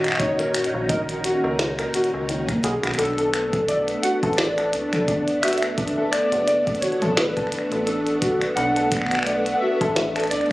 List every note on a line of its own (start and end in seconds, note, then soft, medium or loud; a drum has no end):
0.00 0.65 F#2 medium
0.00 2.60 A#2 medium
0.00 2.60 D#3 medium
0.00 2.60 C#4 medium
0.00 2.60 D#4 medium
0.00 2.60 F#4 medium
0.00 0.22 D#5 medium
0.04 finger snap medium
0.04 closed hi-hat soft
0.07 finger snap soft
0.08 finger snap medium
0.08 finger snap soft
0.11 finger snap soft
0.11 finger snap medium
0.13 finger snap soft
0.15 finger snap soft
0.15 finger snap medium
0.17 0.37 D#4 medium
0.17 0.91 C#5 loud
0.17 finger snap medium
0.17 kick loud
0.17 closed hi-hat medium
0.39 0.45 A#4 loud
0.39 closed hi-hat soft
0.55 finger snap medium
0.55 closed hi-hat medium
0.64 closed hi-hat soft
0.74 1.35 A#1 medium
0.88 1.01 D#4 medium
0.88 1.55 A#4 medium
0.88 kick loud
0.88 closed hi-hat medium
1.09 closed hi-hat soft
1.24 1.42 F#4 medium
1.24 closed hi-hat medium
1.44 1.87 C#2 loud
1.44 1.53 A#4 loud
1.59 snare loud
1.59 closed hi-hat medium
1.79 1.84 A#4 loud
1.79 finger snap medium
1.79 closed hi-hat soft
1.94 2.06 F#4 loud
1.94 closed hi-hat medium
2.04 closed hi-hat soft
2.14 2.57 C#2 medium
2.14 2.23 A#4 medium
2.29 2.41 D#3 medium
2.29 closed hi-hat medium
2.49 2.54 A#3 medium
2.49 finger snap soft
2.49 kick loud
2.49 closed hi-hat soft
2.64 2.78 B1 loud
2.64 10.52 A3 medium
2.64 10.52 B3 medium
2.64 10.52 D4 medium
2.64 2.71 G#4 loud
2.64 closed hi-hat medium
2.83 2.94 B1 loud
2.83 finger snap medium
2.83 closed hi-hat soft
2.87 finger snap soft
2.91 finger snap soft
2.91 closed hi-hat soft
2.95 4.06 A4 loud
2.95 finger snap soft
2.99 3.96 B1 loud
2.99 3.16 D4 medium
2.99 finger snap soft
2.99 closed hi-hat medium
3.04 finger snap soft
3.04 closed hi-hat soft
3.08 finger snap soft
3.13 finger snap soft
3.18 3.24 A4 loud
3.18 closed hi-hat soft
3.34 finger snap medium
3.34 closed hi-hat medium
3.53 kick loud
3.53 closed hi-hat soft
3.68 3.75 D5 loud
3.68 closed hi-hat medium
3.88 closed hi-hat soft
4.02 4.21 F#4 medium
4.02 4.16 F#5 loud
4.02 closed hi-hat medium
4.23 4.75 A1 loud
4.23 4.32 A4 loud
4.23 kick loud
4.23 closed hi-hat soft
4.33 5.45 D5 loud
4.33 closed hi-hat soft
4.38 snare loud
4.38 closed hi-hat medium
4.45 closed hi-hat soft
4.58 4.63 A4 loud
4.58 finger snap medium
4.58 closed hi-hat soft
4.73 6.23 D2 loud
4.73 4.85 D4 medium
4.73 closed hi-hat medium
4.93 5.02 A4 medium
4.93 finger snap medium
4.93 closed hi-hat soft
4.93 mid tom medium
5.08 5.20 D4 medium
5.08 kick loud
5.08 closed hi-hat medium
5.28 closed hi-hat soft
5.42 5.60 F#4 medium
5.42 6.14 E5 loud
5.42 finger snap medium
5.42 closed hi-hat medium
5.48 closed hi-hat medium
5.53 closed hi-hat medium
5.58 closed hi-hat soft
5.63 finger snap medium
5.63 closed hi-hat soft
5.78 5.95 D4 medium
5.78 kick loud
5.78 closed hi-hat medium
5.88 closed hi-hat soft
5.97 6.03 A4 loud
6.11 6.84 D5 loud
6.11 finger snap medium
6.11 closed hi-hat medium
6.32 6.93 F#1 medium
6.32 closed hi-hat soft
6.48 6.55 D5 loud
6.48 closed hi-hat medium
6.67 kick loud
6.67 closed hi-hat soft
6.75 closed hi-hat soft
6.81 7.00 F#4 medium
6.81 7.18 C#5 loud
6.81 closed hi-hat medium
6.92 closed hi-hat soft
7.02 7.45 A1 loud
7.02 7.11 A4 loud
7.02 closed hi-hat soft
7.02 mid tom medium
7.16 7.89 B4 loud
7.16 snare loud
7.16 closed hi-hat medium
7.37 7.42 A4 loud
7.37 finger snap soft
7.37 kick loud
7.37 closed hi-hat soft
7.47 finger snap soft
7.52 7.64 D4 medium
7.52 closed hi-hat medium
7.59 finger snap soft
7.72 8.23 A1 medium
7.72 7.81 A4 medium
7.72 closed hi-hat soft
7.86 7.99 D4 medium
7.86 8.37 A4 medium
7.86 closed hi-hat medium
8.07 closed hi-hat soft
8.22 8.48 B1 medium
8.22 8.39 F#4 medium
8.22 kick loud
8.22 closed hi-hat medium
8.41 finger snap medium
8.41 closed hi-hat soft
8.55 9.54 B1 loud
8.55 8.74 D4 medium
8.55 9.53 F#5 loud
8.55 closed hi-hat medium
8.76 8.82 A4 loud
8.76 closed hi-hat soft
8.92 finger snap soft
8.92 kick loud
8.92 closed hi-hat loud
8.97 finger snap soft
9.02 finger snap soft
9.06 finger snap medium
9.11 finger snap medium
9.11 closed hi-hat soft
9.15 finger snap medium
9.19 finger snap medium
9.23 9.34 D5 loud
9.23 finger snap medium
9.23 closed hi-hat medium
9.46 closed hi-hat soft
9.54 9.61 F#5 medium
9.60 9.79 F#4 medium
9.60 10.33 E5 loud
9.81 10.33 A1 loud
9.81 9.90 A4 loud
9.81 kick loud
9.81 closed hi-hat soft
9.96 snare loud
9.96 closed hi-hat medium
10.16 10.21 A4 loud
10.16 finger snap medium
10.16 closed hi-hat soft
10.20 finger snap soft
10.20 closed hi-hat soft
10.24 closed hi-hat soft
10.27 10.52 D2 medium
10.27 10.43 D4 medium
10.27 10.52 D5 loud
10.27 finger snap soft
10.27 closed hi-hat soft
10.31 closed hi-hat medium
10.41 finger snap soft
10.41 closed hi-hat soft
10.46 closed hi-hat soft